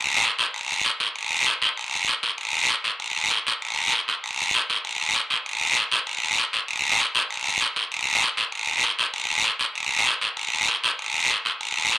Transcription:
0, 0, Header, 1, 2, 480
1, 0, Start_track
1, 0, Tempo, 307535
1, 829, Time_signature, 4, 2, 24, 8
1, 18701, End_track
2, 0, Start_track
2, 0, Title_t, "Drums"
2, 376, Note_on_c, 9, 73, 78
2, 532, Note_off_c, 9, 73, 0
2, 600, Note_on_c, 9, 73, 69
2, 757, Note_off_c, 9, 73, 0
2, 845, Note_on_c, 9, 74, 70
2, 1001, Note_off_c, 9, 74, 0
2, 1321, Note_on_c, 9, 73, 81
2, 1477, Note_off_c, 9, 73, 0
2, 1562, Note_on_c, 9, 73, 71
2, 1718, Note_off_c, 9, 73, 0
2, 1803, Note_on_c, 9, 74, 67
2, 1959, Note_off_c, 9, 74, 0
2, 2277, Note_on_c, 9, 73, 71
2, 2433, Note_off_c, 9, 73, 0
2, 2524, Note_on_c, 9, 73, 63
2, 2680, Note_off_c, 9, 73, 0
2, 2768, Note_on_c, 9, 74, 67
2, 2924, Note_off_c, 9, 74, 0
2, 3243, Note_on_c, 9, 73, 75
2, 3399, Note_off_c, 9, 73, 0
2, 3479, Note_on_c, 9, 73, 68
2, 3635, Note_off_c, 9, 73, 0
2, 3713, Note_on_c, 9, 74, 68
2, 3869, Note_off_c, 9, 74, 0
2, 4199, Note_on_c, 9, 73, 75
2, 4355, Note_off_c, 9, 73, 0
2, 4438, Note_on_c, 9, 73, 64
2, 4594, Note_off_c, 9, 73, 0
2, 4682, Note_on_c, 9, 74, 64
2, 4838, Note_off_c, 9, 74, 0
2, 5166, Note_on_c, 9, 73, 80
2, 5322, Note_off_c, 9, 73, 0
2, 5415, Note_on_c, 9, 73, 77
2, 5571, Note_off_c, 9, 73, 0
2, 5655, Note_on_c, 9, 74, 63
2, 5811, Note_off_c, 9, 74, 0
2, 6128, Note_on_c, 9, 73, 73
2, 6284, Note_off_c, 9, 73, 0
2, 6370, Note_on_c, 9, 73, 59
2, 6526, Note_off_c, 9, 73, 0
2, 6619, Note_on_c, 9, 74, 72
2, 6775, Note_off_c, 9, 74, 0
2, 7093, Note_on_c, 9, 73, 74
2, 7249, Note_off_c, 9, 73, 0
2, 7335, Note_on_c, 9, 73, 75
2, 7491, Note_off_c, 9, 73, 0
2, 7568, Note_on_c, 9, 74, 68
2, 7724, Note_off_c, 9, 74, 0
2, 8035, Note_on_c, 9, 73, 69
2, 8192, Note_off_c, 9, 73, 0
2, 8277, Note_on_c, 9, 73, 62
2, 8433, Note_off_c, 9, 73, 0
2, 8524, Note_on_c, 9, 74, 71
2, 8680, Note_off_c, 9, 74, 0
2, 8998, Note_on_c, 9, 73, 78
2, 9154, Note_off_c, 9, 73, 0
2, 9232, Note_on_c, 9, 73, 77
2, 9388, Note_off_c, 9, 73, 0
2, 9472, Note_on_c, 9, 74, 67
2, 9628, Note_off_c, 9, 74, 0
2, 9962, Note_on_c, 9, 73, 71
2, 10118, Note_off_c, 9, 73, 0
2, 10195, Note_on_c, 9, 73, 68
2, 10351, Note_off_c, 9, 73, 0
2, 10431, Note_on_c, 9, 74, 71
2, 10588, Note_off_c, 9, 74, 0
2, 10926, Note_on_c, 9, 73, 75
2, 11082, Note_off_c, 9, 73, 0
2, 11157, Note_on_c, 9, 73, 79
2, 11313, Note_off_c, 9, 73, 0
2, 11401, Note_on_c, 9, 74, 76
2, 11557, Note_off_c, 9, 74, 0
2, 11875, Note_on_c, 9, 73, 78
2, 12031, Note_off_c, 9, 73, 0
2, 12114, Note_on_c, 9, 73, 65
2, 12270, Note_off_c, 9, 73, 0
2, 12356, Note_on_c, 9, 74, 71
2, 12512, Note_off_c, 9, 74, 0
2, 12840, Note_on_c, 9, 73, 77
2, 12996, Note_off_c, 9, 73, 0
2, 13068, Note_on_c, 9, 73, 75
2, 13224, Note_off_c, 9, 73, 0
2, 13302, Note_on_c, 9, 74, 66
2, 13458, Note_off_c, 9, 74, 0
2, 13792, Note_on_c, 9, 73, 78
2, 13948, Note_off_c, 9, 73, 0
2, 14026, Note_on_c, 9, 73, 65
2, 14182, Note_off_c, 9, 73, 0
2, 14259, Note_on_c, 9, 74, 76
2, 14416, Note_off_c, 9, 74, 0
2, 14738, Note_on_c, 9, 73, 81
2, 14894, Note_off_c, 9, 73, 0
2, 14974, Note_on_c, 9, 73, 71
2, 15130, Note_off_c, 9, 73, 0
2, 15222, Note_on_c, 9, 74, 67
2, 15379, Note_off_c, 9, 74, 0
2, 15708, Note_on_c, 9, 73, 73
2, 15865, Note_off_c, 9, 73, 0
2, 15943, Note_on_c, 9, 73, 68
2, 16099, Note_off_c, 9, 73, 0
2, 16185, Note_on_c, 9, 74, 70
2, 16341, Note_off_c, 9, 74, 0
2, 16675, Note_on_c, 9, 73, 69
2, 16831, Note_off_c, 9, 73, 0
2, 16913, Note_on_c, 9, 73, 75
2, 17070, Note_off_c, 9, 73, 0
2, 17154, Note_on_c, 9, 74, 67
2, 17310, Note_off_c, 9, 74, 0
2, 17642, Note_on_c, 9, 73, 71
2, 17798, Note_off_c, 9, 73, 0
2, 17873, Note_on_c, 9, 73, 60
2, 18029, Note_off_c, 9, 73, 0
2, 18116, Note_on_c, 9, 74, 73
2, 18273, Note_off_c, 9, 74, 0
2, 18605, Note_on_c, 9, 73, 72
2, 18701, Note_off_c, 9, 73, 0
2, 18701, End_track
0, 0, End_of_file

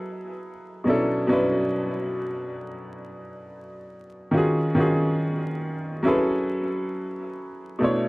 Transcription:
0, 0, Header, 1, 2, 480
1, 0, Start_track
1, 0, Tempo, 869565
1, 479, Time_signature, 4, 2, 24, 8
1, 4463, End_track
2, 0, Start_track
2, 0, Title_t, "Upright piano"
2, 0, Program_c, 0, 0
2, 0, Control_c, 0, 64, 127
2, 0, Note_on_c, 0, 54, 92
2, 0, Note_on_c, 0, 64, 85
2, 0, Note_on_c, 0, 68, 78
2, 0, Note_on_c, 0, 69, 81
2, 0, Note_on_c, 0, 71, 86
2, 0, Note_on_c, 0, 75, 62
2, 281, Note_off_c, 0, 54, 0
2, 285, Note_off_c, 0, 64, 0
2, 290, Note_off_c, 0, 68, 0
2, 293, Note_off_c, 0, 69, 0
2, 298, Note_off_c, 0, 71, 0
2, 463, Note_on_c, 0, 47, 75
2, 471, Note_on_c, 0, 54, 78
2, 477, Note_on_c, 0, 61, 74
2, 483, Note_on_c, 0, 62, 77
2, 487, Control_c, 0, 64, 0
2, 488, Note_on_c, 0, 64, 77
2, 491, Note_off_c, 0, 75, 0
2, 495, Note_on_c, 0, 69, 87
2, 575, Control_c, 0, 64, 127
2, 649, Note_off_c, 0, 47, 0
2, 652, Note_off_c, 0, 54, 0
2, 655, Note_off_c, 0, 61, 0
2, 659, Note_off_c, 0, 62, 0
2, 661, Note_off_c, 0, 64, 0
2, 664, Note_off_c, 0, 69, 0
2, 700, Note_on_c, 0, 47, 88
2, 705, Note_on_c, 0, 54, 79
2, 713, Note_on_c, 0, 61, 89
2, 718, Note_on_c, 0, 62, 80
2, 725, Note_on_c, 0, 64, 84
2, 730, Note_on_c, 0, 71, 97
2, 1380, Note_off_c, 0, 47, 0
2, 1382, Note_off_c, 0, 54, 0
2, 1386, Note_off_c, 0, 61, 0
2, 1389, Note_off_c, 0, 62, 0
2, 1392, Note_off_c, 0, 64, 0
2, 1395, Note_off_c, 0, 71, 0
2, 2381, Note_on_c, 0, 51, 84
2, 2389, Note_on_c, 0, 61, 69
2, 2397, Note_on_c, 0, 65, 77
2, 2406, Note_on_c, 0, 66, 74
2, 2407, Control_c, 0, 64, 0
2, 2414, Note_on_c, 0, 68, 89
2, 2502, Control_c, 0, 64, 127
2, 2567, Note_off_c, 0, 51, 0
2, 2572, Note_off_c, 0, 61, 0
2, 2575, Note_off_c, 0, 65, 0
2, 2580, Note_off_c, 0, 66, 0
2, 2584, Note_off_c, 0, 68, 0
2, 2620, Note_on_c, 0, 51, 95
2, 2626, Note_on_c, 0, 61, 80
2, 2634, Note_on_c, 0, 65, 83
2, 2644, Note_on_c, 0, 66, 78
2, 2651, Note_on_c, 0, 68, 91
2, 3300, Note_off_c, 0, 51, 0
2, 3303, Note_off_c, 0, 61, 0
2, 3307, Note_off_c, 0, 65, 0
2, 3312, Note_off_c, 0, 66, 0
2, 3315, Note_off_c, 0, 68, 0
2, 3327, Note_on_c, 0, 54, 92
2, 3333, Note_on_c, 0, 61, 86
2, 3340, Note_on_c, 0, 64, 84
2, 3347, Note_on_c, 0, 68, 81
2, 3354, Note_on_c, 0, 69, 83
2, 3358, Note_on_c, 0, 71, 98
2, 3367, Control_c, 0, 64, 0
2, 3461, Control_c, 0, 64, 127
2, 4119, Note_off_c, 0, 54, 0
2, 4122, Note_off_c, 0, 61, 0
2, 4126, Note_off_c, 0, 64, 0
2, 4129, Note_off_c, 0, 68, 0
2, 4132, Note_off_c, 0, 69, 0
2, 4134, Note_off_c, 0, 71, 0
2, 4299, Note_on_c, 0, 47, 86
2, 4309, Note_on_c, 0, 57, 74
2, 4316, Note_on_c, 0, 62, 74
2, 4323, Note_on_c, 0, 64, 78
2, 4326, Control_c, 0, 64, 0
2, 4329, Note_on_c, 0, 73, 87
2, 4415, Control_c, 0, 64, 127
2, 4463, Note_off_c, 0, 47, 0
2, 4463, Note_off_c, 0, 57, 0
2, 4463, Note_off_c, 0, 62, 0
2, 4463, Note_off_c, 0, 64, 0
2, 4463, Note_off_c, 0, 73, 0
2, 4463, End_track
0, 0, End_of_file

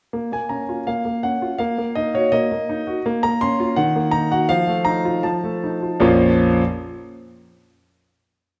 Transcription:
0, 0, Header, 1, 2, 480
1, 0, Start_track
1, 0, Key_signature, -5, "minor"
1, 0, Tempo, 726392
1, 92, Time_signature, 2, 2, 24, 8
1, 2971, Tempo, 777202
1, 5506, End_track
2, 0, Start_track
2, 0, Title_t, "Grand piano"
2, 0, Program_c, 0, 0
2, 87, Note_on_c, 0, 58, 49
2, 203, Note_off_c, 0, 58, 0
2, 213, Note_on_c, 0, 58, 35
2, 218, Note_on_c, 0, 80, 63
2, 219, Control_c, 0, 64, 127
2, 326, Note_on_c, 0, 82, 56
2, 330, Note_on_c, 0, 61, 38
2, 337, Note_off_c, 0, 80, 0
2, 407, Note_off_c, 0, 58, 0
2, 456, Note_on_c, 0, 65, 36
2, 526, Note_off_c, 0, 61, 0
2, 572, Note_off_c, 0, 82, 0
2, 574, Note_on_c, 0, 77, 70
2, 578, Note_on_c, 0, 58, 42
2, 581, Control_c, 0, 64, 0
2, 649, Note_off_c, 0, 65, 0
2, 684, Note_off_c, 0, 58, 0
2, 693, Note_on_c, 0, 58, 38
2, 814, Note_on_c, 0, 78, 70
2, 817, Note_off_c, 0, 77, 0
2, 818, Note_on_c, 0, 61, 40
2, 888, Note_off_c, 0, 58, 0
2, 939, Note_on_c, 0, 65, 38
2, 1011, Note_off_c, 0, 61, 0
2, 1047, Note_on_c, 0, 77, 80
2, 1055, Note_on_c, 0, 58, 59
2, 1057, Note_off_c, 0, 78, 0
2, 1059, Note_off_c, 0, 65, 0
2, 1168, Note_off_c, 0, 58, 0
2, 1178, Note_on_c, 0, 58, 45
2, 1182, Control_c, 0, 64, 127
2, 1292, Note_on_c, 0, 75, 74
2, 1293, Note_off_c, 0, 77, 0
2, 1297, Note_on_c, 0, 63, 46
2, 1371, Note_off_c, 0, 58, 0
2, 1414, Note_on_c, 0, 66, 48
2, 1415, Note_off_c, 0, 75, 0
2, 1419, Note_on_c, 0, 73, 77
2, 1489, Note_off_c, 0, 63, 0
2, 1532, Note_on_c, 0, 75, 88
2, 1538, Note_off_c, 0, 73, 0
2, 1538, Note_on_c, 0, 58, 55
2, 1541, Control_c, 0, 64, 0
2, 1607, Note_off_c, 0, 66, 0
2, 1654, Note_off_c, 0, 58, 0
2, 1664, Note_on_c, 0, 58, 50
2, 1780, Note_on_c, 0, 63, 54
2, 1849, Note_off_c, 0, 58, 0
2, 1897, Note_on_c, 0, 66, 50
2, 1966, Note_off_c, 0, 63, 0
2, 2008, Note_off_c, 0, 75, 0
2, 2013, Note_off_c, 0, 66, 0
2, 2020, Note_on_c, 0, 58, 72
2, 2126, Note_off_c, 0, 58, 0
2, 2135, Note_on_c, 0, 82, 101
2, 2136, Note_on_c, 0, 58, 54
2, 2148, Control_c, 0, 64, 127
2, 2250, Note_off_c, 0, 82, 0
2, 2254, Note_on_c, 0, 84, 104
2, 2264, Note_on_c, 0, 61, 53
2, 2322, Note_off_c, 0, 58, 0
2, 2378, Note_on_c, 0, 65, 57
2, 2446, Note_off_c, 0, 61, 0
2, 2487, Note_on_c, 0, 78, 95
2, 2489, Note_off_c, 0, 84, 0
2, 2492, Note_off_c, 0, 65, 0
2, 2492, Control_c, 0, 64, 0
2, 2492, Note_on_c, 0, 51, 76
2, 2615, Note_on_c, 0, 58, 51
2, 2620, Control_c, 0, 64, 127
2, 2719, Note_on_c, 0, 82, 101
2, 2727, Note_off_c, 0, 78, 0
2, 2728, Note_on_c, 0, 63, 55
2, 2803, Note_off_c, 0, 58, 0
2, 2843, Note_off_c, 0, 82, 0
2, 2850, Note_on_c, 0, 66, 53
2, 2852, Note_on_c, 0, 78, 85
2, 2921, Note_off_c, 0, 63, 0
2, 2958, Note_off_c, 0, 51, 0
2, 2966, Note_on_c, 0, 77, 104
2, 2970, Note_off_c, 0, 66, 0
2, 2971, Note_on_c, 0, 53, 75
2, 2972, Note_off_c, 0, 78, 0
2, 2976, Control_c, 0, 64, 0
2, 3080, Control_c, 0, 64, 127
2, 3082, Note_on_c, 0, 57, 50
2, 3187, Note_on_c, 0, 82, 103
2, 3194, Note_on_c, 0, 63, 58
2, 3199, Note_off_c, 0, 77, 0
2, 3270, Note_off_c, 0, 57, 0
2, 3314, Note_on_c, 0, 65, 52
2, 3386, Note_off_c, 0, 63, 0
2, 3419, Note_off_c, 0, 53, 0
2, 3426, Note_on_c, 0, 81, 74
2, 3428, Note_on_c, 0, 53, 59
2, 3431, Note_off_c, 0, 82, 0
2, 3443, Control_c, 0, 64, 0
2, 3508, Note_off_c, 0, 65, 0
2, 3552, Note_on_c, 0, 57, 50
2, 3676, Note_on_c, 0, 63, 47
2, 3753, Note_off_c, 0, 57, 0
2, 3792, Note_on_c, 0, 65, 42
2, 3875, Note_off_c, 0, 63, 0
2, 3894, Note_off_c, 0, 53, 0
2, 3898, Note_on_c, 0, 34, 95
2, 3900, Note_off_c, 0, 65, 0
2, 3902, Note_on_c, 0, 41, 74
2, 3903, Note_on_c, 0, 53, 84
2, 3904, Note_on_c, 0, 58, 81
2, 3906, Note_on_c, 0, 82, 69
2, 3908, Note_on_c, 0, 61, 81
2, 3909, Note_on_c, 0, 65, 79
2, 3921, Note_off_c, 0, 81, 0
2, 4058, Control_c, 0, 64, 127
2, 4181, Note_off_c, 0, 34, 0
2, 4183, Note_off_c, 0, 41, 0
2, 4184, Note_off_c, 0, 53, 0
2, 4184, Note_off_c, 0, 58, 0
2, 4185, Note_off_c, 0, 82, 0
2, 4186, Note_off_c, 0, 61, 0
2, 4187, Note_off_c, 0, 65, 0
2, 4276, Control_c, 0, 64, 0
2, 5506, End_track
0, 0, End_of_file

